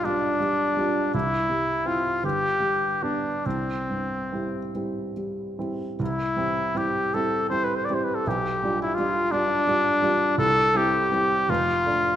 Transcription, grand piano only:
0.00 1.09 B1 soft
0.00 1.16 B2 soft
0.00 0.04 G3 soft
0.00 0.05 D4 soft
0.00 0.05 F4 soft
0.04 0.37 G3 soft
0.04 0.37 D4 soft
0.04 0.37 F4 soft
0.40 0.75 G3 soft
0.77 1.10 G3 soft
0.77 1.11 D4 soft
0.77 1.11 F4 soft
1.14 2.21 C2 soft
1.49 2.08 G3 soft
1.85 2.19 C4 soft
1.85 2.20 E4 soft
2.23 3.41 G1 soft
2.60 3.26 G3 soft
3.02 3.41 B3 soft
3.02 3.41 D4 soft
3.46 5.97 C2 soft
3.89 4.58 G2 soft
4.32 4.71 G3 soft
4.32 4.71 C4 soft
4.32 4.71 E4 soft
4.75 5.13 G3 soft
4.75 5.13 C4 soft
4.75 5.13 E4 soft
5.17 5.57 G3 soft
5.59 5.96 G3 soft
5.59 5.96 C4 soft
5.59 5.96 E4 soft
5.99 6.37 C2 soft
6.36 6.71 G3 soft
6.36 6.72 C4 soft
6.36 6.72 E4 soft
6.75 7.09 G3 soft
6.75 7.09 C4 soft
6.75 7.10 E4 soft
7.14 7.47 G3 soft
7.14 7.48 C4 soft
7.14 7.48 E4 soft
7.51 7.85 G3 soft
7.51 7.85 C4 soft
7.51 7.85 E4 soft
7.90 8.23 G3 soft
7.90 8.23 C4 soft
7.90 8.23 E4 soft
8.27 8.61 B1 soft
8.63 8.94 G3 soft
8.63 8.94 D4 soft
8.63 8.95 F4 soft
8.98 9.29 G3 soft
8.98 9.29 D4 soft
8.98 9.29 F4 soft
9.32 9.64 G3 soft
9.32 9.64 D4 soft
9.32 9.64 F4 soft
9.67 9.99 G3 soft
9.67 9.99 D4 soft
9.67 9.99 F4 soft
10.02 10.34 G3 soft
10.02 10.34 D4 soft
10.02 10.35 F4 soft
10.38 10.73 C2 medium
10.74 11.08 G3 soft
10.74 11.08 C4 soft
10.74 11.08 E4 soft
11.12 11.45 G3 soft
11.12 11.45 C4 soft
11.12 11.45 E4 soft
11.49 11.86 F1 medium
11.86 12.16 A3 soft
11.86 12.16 D4 soft

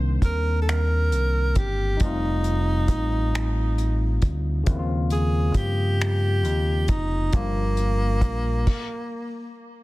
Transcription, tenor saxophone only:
0.24 0.58 A#4 medium
0.62 0.70 A4 medium
0.69 1.58 A#4 medium
1.57 2.04 G4 medium
2.03 4.24 D#4 medium
5.12 5.58 G#4 medium
5.56 6.91 G4 medium
6.89 7.36 D#4 medium
7.35 9.57 A#3 medium

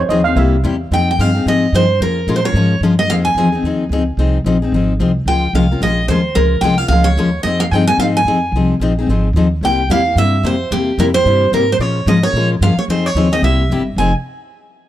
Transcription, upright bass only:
0.09 0.35 D#2 medium
0.36 0.63 C2 loud
0.64 0.90 E2 medium
0.91 1.18 F2 medium
1.18 1.45 G2 medium
1.46 1.72 G#2 medium
1.72 1.99 G2 medium
2.00 2.26 F2 medium
2.27 2.53 A#2 medium
2.54 2.80 G#2 medium
2.81 3.08 G2 medium
3.08 3.34 F2 medium
3.35 3.62 E2 medium
3.63 3.89 D#2 medium
3.89 4.17 C#2 medium
4.17 4.44 C2 medium
4.44 4.71 A#1 medium
4.72 4.99 G#1 medium
5.00 5.25 C2 medium
5.26 5.53 C#2 medium
5.53 5.80 C2 medium
5.81 6.07 A#1 medium
6.08 6.35 D#2 medium
6.36 6.61 C#2 medium
6.61 6.88 C2 medium
6.89 7.16 C#2 medium
7.17 7.44 D#2 medium
7.44 7.71 F2 medium
7.71 7.97 G2 medium
7.98 8.24 G#2 medium
8.25 8.51 F2 medium
8.52 8.79 C2 medium
8.80 9.06 A#1 medium
9.07 9.33 G#1 medium
9.33 9.61 D#2 medium
9.61 9.88 C2 medium
9.89 10.15 E2 medium
10.16 10.43 G2 medium
10.43 10.70 F2 medium
10.71 10.97 E2 medium
10.98 11.24 F2 medium
11.25 11.51 G2 medium
11.52 11.78 G#2 medium
11.79 12.06 A#2 medium
12.06 12.32 G#2 medium
12.33 12.60 A#2 medium
12.61 12.76 G2 medium
12.77 muted upright bass stroke soft
12.88 13.14 F2 medium
13.15 13.41 D#2 medium
13.42 13.69 C2 medium
13.70 13.96 G1 medium
13.96 14.12 F1 medium

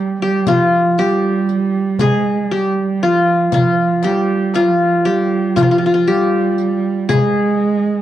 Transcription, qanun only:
0.00 0.22 G4 medium
0.22 0.98 G4 medium
0.48 1.83 F4 medium
0.99 2.07 G4 medium
2.01 2.57 G#4 medium
2.51 3.77 G4 medium
3.03 3.54 F4 medium
3.54 4.55 F4 medium
4.04 5.05 G4 medium
4.55 5.55 F4 medium
5.05 6.07 G4 medium
5.56 5.62 F4 medium
5.62 5.70 F4 medium
5.71 5.78 F4 medium
5.78 5.85 F4 medium
5.86 5.93 F4 medium
5.94 7.28 F4 medium
6.07 7.15 G4 medium
7.09 8.02 G#4 medium

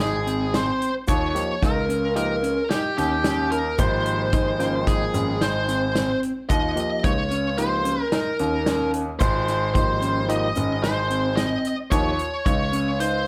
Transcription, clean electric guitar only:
0.00 0.17 D#4 medium
0.26 0.44 C4 medium
0.53 0.90 C4 medium
1.07 1.44 F4 medium
1.62 1.80 D#4 medium
1.89 2.07 C#4 medium
2.16 2.34 D#4 medium
2.43 2.61 C#4 medium
2.71 2.88 D#4 medium
2.98 3.15 C#4 medium
3.24 3.60 C#4 medium
3.79 4.15 F4 medium
4.33 4.51 D#4 medium
4.59 4.78 C#4 medium
4.87 5.05 D#4 medium
5.14 5.32 C#4 medium
5.41 5.59 D#4 medium
5.68 5.86 C4 medium
5.95 6.31 C4 medium
6.50 6.86 F4 medium
7.04 7.22 D#4 medium
7.30 7.49 C#4 medium
7.58 7.76 D#4 medium
7.85 8.03 C#4 medium
8.12 8.30 D#4 medium
8.40 8.57 C#4 medium
8.67 9.03 C#4 medium
9.20 9.56 F4 medium
9.75 9.93 D#4 medium
10.02 10.20 C#4 medium
10.29 10.47 D#4 medium
10.56 10.74 C#4 medium
10.83 11.01 D#4 medium
11.10 11.28 C4 medium
11.37 11.73 C4 medium
11.92 12.28 F4 medium
12.46 12.64 D#4 medium
12.73 12.91 C#4 medium
13.00 13.18 D#4 medium

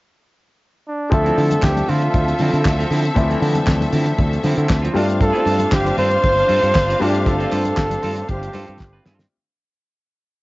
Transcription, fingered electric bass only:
1.12 1.30 D2 loud
1.38 1.56 D3 loud
1.63 1.81 D2 loud
1.89 2.07 D3 medium
2.14 2.32 D2 loud
2.40 2.49 D3 medium
2.53 2.62 D3 medium
2.66 2.83 D2 medium
2.91 3.09 D3 medium
3.17 3.34 D2 loud
3.42 3.60 D3 medium
3.67 3.85 D2 medium
3.93 4.11 D3 medium
4.19 4.37 D2 medium
4.44 4.54 D3 medium
4.58 4.66 D3 loud
4.70 4.88 D2 medium
4.95 5.31 G2 medium
5.46 5.64 G2 medium
5.72 5.90 G1 loud
5.98 6.16 G2 medium
6.24 6.42 G1 medium
6.49 6.59 G2 medium
6.63 6.71 G2 medium
6.75 6.93 G1 loud
7.01 7.28 G2 medium
7.26 7.44 G1 medium
7.52 7.70 G2 loud
7.78 7.96 G1 medium
8.03 8.21 G2 medium
8.29 8.47 G1 medium
8.55 8.64 G2 medium
8.69 8.77 G2 medium
8.81 8.99 G1 loud
9.06 9.24 G2 loud

